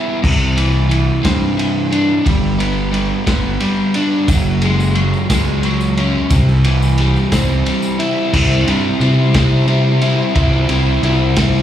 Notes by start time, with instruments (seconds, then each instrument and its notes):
Already playing: overdriven electric guitar E3 G3 B3 E4
0.22 picked electric bass C2, overdriven electric guitar C3, kick, crash
0.56 overdriven electric guitar E3, ride
0.89 overdriven electric guitar E3, ride
1.23 picked electric bass G2, overdriven electric guitar C4, kick, snare, ride
1.57 overdriven electric guitar E3, ride
1.92 overdriven electric guitar D4, ride
2.25 picked electric bass G1, overdriven electric guitar G3, kick, ride
2.58 overdriven electric guitar B3, ride
2.91 overdriven electric guitar G3, ride
3.27 picked electric bass G1, overdriven electric guitar B3, kick, snare, ride
3.60 overdriven electric guitar G3, ride
3.94 overdriven electric guitar D4, ride
4.28 picked electric bass F#1, overdriven electric guitar F#3, kick, ride, tambourine
4.62 overdriven electric guitar G#3, ride
4.80 tambourine
4.95 overdriven electric guitar F#3, ride
5.14 tambourine
5.30 picked electric bass C#2, overdriven electric guitar G#3, kick, snare, ride, tambourine
5.63 overdriven electric guitar F#3, ride
5.81 tambourine
5.97 overdriven electric guitar C#4, ride
6.30 picked electric bass C2, overdriven electric guitar C3, kick, ride, tambourine
6.49 tambourine
6.64 overdriven electric guitar E3, ride
6.82 tambourine
6.98 overdriven electric guitar G3, ride
7.16 tambourine
7.32 picked electric bass C2, overdriven electric guitar C4, kick, snare, ride, tambourine
7.66 overdriven electric guitar G3, ride, tambourine
7.82 tambourine
7.99 overdriven electric guitar E4, ride
8.33 picked electric bass C2, overdriven electric guitar C3 G3 C4 E4, kick, crash
8.67 picked electric bass G2, overdriven electric guitar C3 G3 C4 E4, ride
9.00 overdriven electric guitar C3 G3 C4 E4, picked electric bass C3, ride
9.34 overdriven electric guitar C3 G3 C4 E4, kick, snare, ride
9.67 overdriven electric guitar C3 G3 C4 E4, ride
10.01 overdriven electric guitar C3 G3 C4 E4, ride
10.35 picked electric bass C2, overdriven electric guitar C3 G3 C4 E4, kick, ride
10.69 picked electric bass C2, overdriven electric guitar C3 G3 C4 E4, ride
11.02 picked electric bass C2, overdriven electric guitar C3 G3 C4 E4, ride
11.36 overdriven electric guitar C3 G3 C4 E4, kick, snare, ride